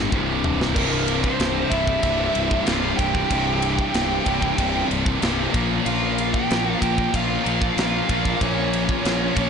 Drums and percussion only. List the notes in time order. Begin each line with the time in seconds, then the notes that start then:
0.12 kick
0.44 floor tom
0.61 snare
0.76 kick, crash
1.08 ride
1.24 kick
1.40 snare, ride
1.72 kick, ride
1.87 kick
2.03 kick, ride
2.35 ride
2.51 kick
2.67 snare, ride
2.99 kick, ride
3.15 kick
3.31 kick, ride
3.62 ride
3.79 kick
3.94 snare, ride
4.26 kick, ride
4.42 kick
4.58 kick, ride
4.91 ride
5.06 kick
5.22 snare, ride
5.54 kick, ride
5.86 ride
6.18 ride
6.34 kick
6.50 snare, ride
6.82 kick, ride
6.98 kick
7.14 kick, ride
7.46 ride
7.62 kick
7.78 snare, ride
8.09 kick, ride
8.25 kick
8.41 kick, ride
8.73 ride
8.89 kick
9.05 snare, ride
9.37 kick, ride